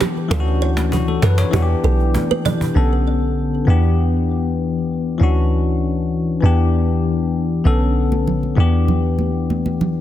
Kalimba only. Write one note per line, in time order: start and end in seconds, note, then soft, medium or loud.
0.01 0.09 G4 medium
0.31 0.39 A4 loud
0.62 0.70 C#5 medium
1.23 1.31 A4 medium
1.54 1.62 G4 medium
1.84 1.92 A4 medium
2.31 2.39 B4 medium
2.46 2.54 D5 medium